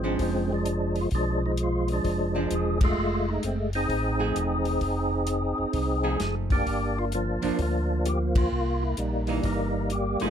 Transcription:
Already playing: tonewheel organ G#1 F3 G#3 C4
0.04 hollow-body jazz guitar G#3 C#4 D4
0.19 tonewheel organ F1 F3 G#3 C4, kick, open hi-hat
0.52 tonewheel organ F3 G#3 D4
0.66 closed hi-hat
0.96 open hi-hat
1.01 tonewheel organ F4
1.11 tonewheel organ B1 F3 G#3, kick, open hi-hat
1.15 tonewheel organ D4
1.46 tonewheel organ D#4
1.57 closed hi-hat
1.63 tonewheel organ F4
1.88 tonewheel organ G#3, open hi-hat
1.92 tonewheel organ F3 D4
2.05 tonewheel organ F1, kick, open hi-hat
2.35 hollow-body jazz guitar F3 G#3 D4
2.51 tonewheel organ E1 G#4, closed hi-hat
2.81 tonewheel organ G#3 A3 F4, kick, ride
2.97 tonewheel organ F1
3.29 tonewheel organ D#4
3.43 tonewheel organ F#1 C4, closed hi-hat
3.73 tonewheel organ C4 D#4 G#4, open hi-hat
3.89 tonewheel organ A1, kick, open hi-hat
4.19 hollow-body jazz guitar F3 A3 D#4 G#4
4.36 tonewheel organ E1, closed hi-hat
4.65 open hi-hat
4.81 tonewheel organ F1, kick, open hi-hat
5.27 closed hi-hat
5.58 tonewheel organ F1
5.73 tonewheel organ C2, kick, open hi-hat
6.03 hollow-body jazz guitar F3 A3 D#4 G#4
6.20 tonewheel organ F#1 G#4, snare, closed hi-hat
6.50 tonewheel organ A#3 D4 G4, kick, open hi-hat
6.66 tonewheel organ G1, kick, open hi-hat
6.99 tonewheel organ F4
7.12 tonewheel organ F3 A#3 D4, closed hi-hat
7.42 tonewheel organ G1, hollow-body jazz guitar F3 A#3 D4, open hi-hat
7.59 tonewheel organ D2 F3 A#3 D4, kick, open hi-hat
8.06 tonewheel organ G4, closed hi-hat
8.35 tonewheel organ A#3 F4, kick, ride
8.52 tonewheel organ C2
8.83 tonewheel organ E4
8.97 tonewheel organ A#1 G3 A#3 D#4, closed hi-hat
9.27 hollow-body jazz guitar E3 A#3 D#4, open hi-hat
9.40 tonewheel organ G1 D4, kick, open hi-hat
9.45 tonewheel organ G3 A#3 D#4
9.90 tonewheel organ G4, closed hi-hat
10.20 tonewheel organ G1 G#3 A3 F4, hollow-body jazz guitar F3 A3 D#4 G#4, open hi-hat

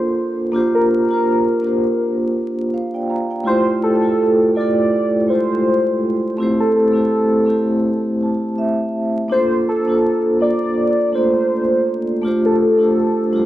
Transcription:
Already playing: vibraphone A#3 D4 F4 A4 A#4 C5, soft synth lead C5
0.52 vibraphone A#3 D4 F4
0.56 vibraphone G4 C5
0.75 soft synth lead A#4
0.91 soft synth lead A#4
1.08 vibraphone A#3 D4 F4
1.12 vibraphone G4 C5
1.61 vibraphone A#3 D4 F4
1.66 vibraphone G4 C5
2.74 vibraphone C5 F5
2.94 vibraphone D5 G5
3.09 vibraphone F5 A#5
3.30 vibraphone D5 G5
3.43 vibraphone A3 E4 F4, soft synth lead C5
3.48 vibraphone G4 C5
3.83 soft synth lead A4
4.01 vibraphone A3 E4 F4
4.05 vibraphone G4 A4
4.55 vibraphone A3 E4 F4, soft synth lead D5
4.59 vibraphone G4 A4
5.28 vibraphone G#3 E4 F4, soft synth lead C5
5.32 vibraphone A3 G4 C5
6.37 vibraphone A3 C4 E4
6.42 vibraphone G4 C5
6.60 soft synth lead A4
6.76 soft synth lead A4
6.92 vibraphone A3 C4 E4
6.96 vibraphone G4 C5
7.45 vibraphone A3 C4 E4
7.49 vibraphone G4 C5
8.23 vibraphone A5
8.58 vibraphone E5
9.29 vibraphone A#3 D4 F4, soft synth lead C5
9.33 vibraphone A4 C5
9.69 soft synth lead A4
9.86 vibraphone A#3 D4 F4
9.90 vibraphone A4 C5
10.39 vibraphone A#3 D4 F4, soft synth lead D5
10.44 vibraphone A4 C5
11.12 vibraphone A3 D4 F4, soft synth lead C5
11.16 vibraphone A#3 A4 D5
12.21 vibraphone A3 D4 F4
12.26 vibraphone G4 C5
12.45 soft synth lead A4
12.62 soft synth lead A4
12.77 vibraphone A3 D4 F4
12.82 vibraphone G4 C5
13.31 vibraphone G3 D4 F4
13.36 vibraphone A3 G4 C5

